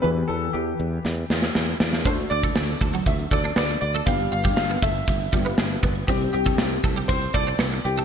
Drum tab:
HH |----------------|xxxx-xxxxxxx-xxx|xxxx-xxxxxxx-xxx|xxxx-xxxxxxx-xxx|
SD |--------o-ooo-oo|----o-------o---|----o-------o---|----o-------o---|
BD |----------------|o--o--o-o-o-----|o--o--o-o-o---o-|o--o--o-o-o-----|